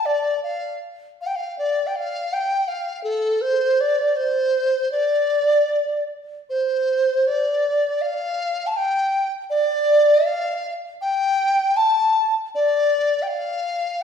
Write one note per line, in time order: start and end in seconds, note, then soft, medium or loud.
0.05 0.43 D5 medium
0.43 0.78 F5 medium
1.21 1.28 F5 medium
1.26 1.37 G5 medium
1.36 1.58 F5 medium
1.58 1.88 D5 medium
1.87 1.97 G5 medium
1.96 2.34 F5 medium
2.33 2.69 G5 medium
2.68 3.03 F5 medium
3.03 3.43 A4 medium
3.41 3.82 C5 medium
3.80 4.18 D5 medium
4.16 4.91 C5 medium
4.92 6.04 D5 medium
6.50 7.28 C5 medium
7.27 8.03 D5 medium
8.01 8.68 F5 medium
8.67 8.78 A5 medium
8.76 9.31 G5 medium
9.50 10.27 D5 medium
10.26 10.74 F5 medium
11.01 11.78 G5 medium
11.76 12.34 A5 medium
12.55 13.24 D5 medium
13.22 13.29 G5 medium
13.28 14.03 F5 medium